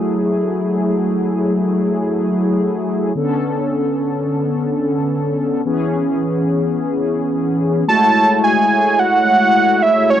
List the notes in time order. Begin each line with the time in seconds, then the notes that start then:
Already playing: F#3 A3 E4 G#4
3.15 D3 B3 C#4 A4
5.65 E3 B3 C#4 G#4
7.87 G#3 A3 E4 F#4 C#5 A5
8.44 G#5
8.99 F#5
9.82 E5
10.10 C#5